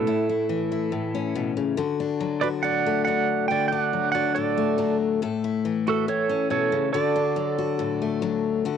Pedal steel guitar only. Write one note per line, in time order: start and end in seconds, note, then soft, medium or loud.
0.00 1.52 E4 medium
0.00 1.51 A4 medium
2.41 2.48 B4 medium
2.41 2.47 D5 medium
2.63 3.04 D5 medium
2.63 3.04 F#5 medium
3.05 3.47 D5 medium
3.05 3.46 F#5 medium
3.48 3.71 D5 medium
3.48 3.68 G5 loud
3.68 4.12 D5 medium
3.68 3.79 G5 medium
3.79 4.11 F#5 medium
4.12 4.34 D5 medium
4.12 4.35 F#5 medium
4.35 4.97 A4 medium
4.35 4.96 D5 medium
5.88 6.07 F#4 medium
5.88 6.07 A4 medium
6.08 6.48 A4 medium
6.08 6.50 C#5 medium
6.51 6.91 A4 medium
6.51 6.91 C#5 medium
6.93 8.18 A4 medium
6.93 8.18 D5 medium